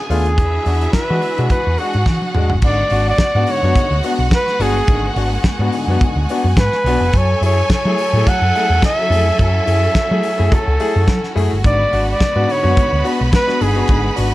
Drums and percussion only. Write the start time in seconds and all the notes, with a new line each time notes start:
0.10 open hi-hat
0.26 closed hi-hat
0.38 kick, closed hi-hat
0.66 open hi-hat
0.81 closed hi-hat
0.93 kick, snare, closed hi-hat
1.22 open hi-hat
1.38 closed hi-hat
1.50 kick, closed hi-hat
1.78 open hi-hat
1.94 closed hi-hat
2.06 kick, snare
2.22 high tom
2.35 mid tom
2.50 floor tom
2.62 kick, crash
2.90 open hi-hat
3.18 kick, snare, closed hi-hat
3.47 open hi-hat
3.76 kick, closed hi-hat
4.03 open hi-hat
4.31 kick, snare, closed hi-hat
4.47 snare
4.60 open hi-hat
4.88 kick, closed hi-hat
5.16 open hi-hat
5.44 kick, snare, closed hi-hat
5.72 open hi-hat
6.01 kick, closed hi-hat
6.29 open hi-hat
6.57 kick, snare, closed hi-hat
6.73 snare
6.86 open hi-hat
7.13 kick, closed hi-hat
7.43 open hi-hat
7.70 kick, snare, closed hi-hat
7.98 open hi-hat
8.27 kick, closed hi-hat
8.55 open hi-hat
8.82 kick, snare, closed hi-hat
9.12 open hi-hat
9.39 kick, closed hi-hat
9.67 open hi-hat
9.95 kick, snare, closed hi-hat
10.23 open hi-hat
10.52 kick, closed hi-hat
10.80 open hi-hat
11.08 kick, snare, closed hi-hat
11.24 snare
11.37 open hi-hat
11.64 kick, closed hi-hat
11.93 open hi-hat
12.21 kick, snare, closed hi-hat
12.49 open hi-hat
12.77 kick, closed hi-hat
13.05 open hi-hat
13.33 kick, snare, closed hi-hat
13.49 snare
13.61 open hi-hat
13.88 kick, closed hi-hat
14.17 open hi-hat